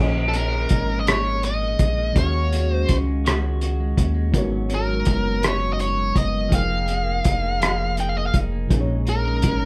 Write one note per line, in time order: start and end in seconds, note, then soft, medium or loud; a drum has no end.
0.00 0.67 A#1 medium
0.00 1.06 A#2 medium
0.00 2.10 A#2 medium
0.00 2.11 F3 medium
0.00 0.33 C#4 medium
0.00 2.12 C#4 medium
0.00 2.13 G#4 medium
0.00 0.15 C5 soft
0.00 2.13 C#5 medium
0.00 2.14 D#5 medium
0.00 0.14 G#5 medium
0.16 0.52 D#3 soft
0.29 0.35 A4 medium
0.33 1.07 C#4 medium
0.33 1.00 A#4 medium
0.33 closed hi-hat soft
0.53 0.89 D#3 medium
0.69 1.76 G#1 medium
0.69 1.79 G#3 soft
0.69 kick medium
0.69 closed hi-hat medium
0.89 1.25 D#3 soft
1.00 1.07 D#5 medium
1.07 2.23 A#2 medium
1.07 1.43 C#4 medium
1.07 1.42 C#5 medium
1.07 cross-stick loud
1.07 closed hi-hat medium
1.25 1.61 D#3 soft
1.43 2.88 C#4 medium
1.43 2.18 D#5 medium
1.43 closed hi-hat soft
1.61 1.98 D#3 medium
1.79 2.13 A#1 medium
1.79 2.34 G#3 soft
1.79 kick medium
1.79 closed hi-hat medium
1.98 2.16 D#3 soft
2.13 2.85 D#2 medium
2.13 4.29 D#3 medium
2.13 3.24 D#3 medium
2.13 4.29 C#4 medium
2.13 4.30 F#4 medium
2.13 kick medium
2.13 closed hi-hat medium
2.17 2.52 F#4 medium
2.17 4.31 G#4 medium
2.17 2.71 C#5 medium
2.17 2.24 E5 soft
2.26 4.35 F5 medium
2.34 2.70 G#3 soft
2.52 3.25 F#4 medium
2.52 closed hi-hat soft
2.70 3.06 G#3 medium
2.70 2.95 C5 medium
2.88 3.94 C#2 medium
2.88 3.97 C#4 medium
2.88 kick medium
2.88 closed hi-hat medium
3.07 3.43 G#3 soft
3.25 4.50 D#3 medium
3.25 3.62 F#4 medium
3.25 cross-stick medium
3.25 closed hi-hat medium
3.43 3.80 G#3 medium
3.61 5.44 F#4 medium
3.61 closed hi-hat soft
3.80 4.14 G#3 medium
3.97 4.36 D#2 medium
3.97 4.35 C#4 soft
3.97 kick medium
3.97 closed hi-hat medium
4.14 4.54 G#3 medium
4.31 5.03 G#1 medium
4.31 5.40 G#2 medium
4.31 6.47 G#3 medium
4.31 6.47 D#4 medium
4.31 6.48 F#4 medium
4.31 kick medium
4.31 closed hi-hat medium
4.35 6.49 B3 medium
4.35 4.68 C#4 medium
4.35 6.49 A#4 medium
4.35 6.50 C#5 medium
4.51 4.86 F#3 soft
4.69 5.41 C#4 medium
4.69 closed hi-hat soft
4.75 5.47 A#4 medium
4.87 5.23 F#3 medium
5.05 6.12 F#1 medium
5.05 6.13 B3 medium
5.05 kick medium
5.05 closed hi-hat medium
5.24 5.57 F#3 soft
5.41 6.59 G#2 medium
5.41 5.74 C#4 medium
5.41 cross-stick medium
5.41 closed hi-hat medium
5.47 5.73 C#5 medium
5.58 5.94 F#3 soft
5.73 6.57 C#4 medium
5.73 5.80 D#5 medium
5.79 6.18 C#5 medium
5.79 closed hi-hat soft
5.95 6.31 F#3 medium
6.14 6.49 F#1 medium
6.14 6.59 B3 soft
6.14 6.51 D#5 medium
6.14 kick medium
6.14 closed hi-hat medium
6.32 6.48 F#3 soft
6.49 7.60 F3 medium
6.49 8.65 F3 medium
6.49 8.66 D#4 medium
6.49 6.86 G#4 medium
6.49 8.66 G5 soft
6.49 kick medium
6.49 closed hi-hat medium
6.53 7.21 F1 loud
6.53 8.67 G#4 medium
6.53 8.68 A#4 medium
6.53 7.95 F5 medium
6.68 7.04 A#3 soft
6.86 7.61 G#4 medium
6.86 closed hi-hat soft
7.04 7.42 A#3 medium
7.24 8.31 F1 medium
7.24 8.34 D#4 medium
7.24 kick medium
7.24 closed hi-hat medium
7.43 7.78 A#3 soft
7.60 8.87 F3 medium
7.60 7.98 G#4 soft
7.60 cross-stick medium
7.60 closed hi-hat medium
7.79 8.15 A#3 soft
7.97 9.65 G#4 medium
7.97 8.08 G5 medium
7.97 closed hi-hat soft
8.09 8.17 F5 medium
8.16 8.52 A#3 medium
8.16 8.26 D#5 medium
8.26 8.35 F5 medium
8.34 8.67 F1 medium
8.34 8.70 D#4 soft
8.34 kick medium
8.34 closed hi-hat medium
8.52 8.90 A#3 soft
8.67 9.65 A#2 medium
8.67 9.65 F3 medium
8.67 9.65 C#4 medium
8.67 9.05 D#4 medium
8.67 kick medium
8.67 closed hi-hat medium
8.71 9.46 A#1 loud
8.71 9.65 D#4 medium
8.71 9.65 G#4 medium
8.71 8.79 A#4 medium
8.81 9.65 C#5 medium
8.87 9.24 G#3 soft
9.05 9.65 D#4 medium
9.05 9.65 A#4 medium
9.05 closed hi-hat soft
9.24 9.59 G#3 medium
9.42 9.65 G#1 medium
9.42 9.65 C#4 medium
9.42 kick medium
9.42 closed hi-hat medium
9.60 9.65 G#3 soft